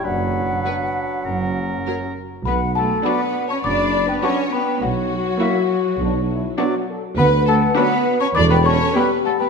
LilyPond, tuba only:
\new Staff \with { instrumentName = "Tuba" } { \clef bass \time 4/4 \key b \minor \tempo 4 = 102 fis,,4 r4 fis,,4 r4 | b,,4 r4 fis,,4 r4 | b,,4 r4 b,,4 r4 | d,4 r4 e,,4 r4 | }